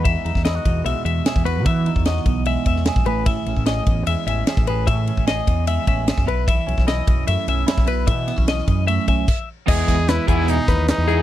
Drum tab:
CC |----------------|----------------|----------------|----------------|
RD |x-x-x-x-x-x-x-x-|x-x-x-x-x-x-x-x-|x-x-x-x-x-x-x-x-|x-x-x-x-x-x-x-x-|
HH |----------------|----------------|----------------|----------------|
SD |---oo-------o---|----oo-----oo---|----o-------o---|----o-------o---|
BD |o--o--o------o--|o--o--o---o--o--|o--o--o------o--|o--o--o---o--o--|

CC |----------------|------------x---|x---------------|
RD |x-x-x-x-x-x-x-x-|x-x-x-x-x-x-----|----------------|
HH |----------------|----------------|--x-x-x-x-x-x-x-|
SD |---oo-------oo--|--o-oo----------|--o-o-----o-o---|
BD |o--o--o------o--|o--o--o---o-o---|o-o---o---o-----|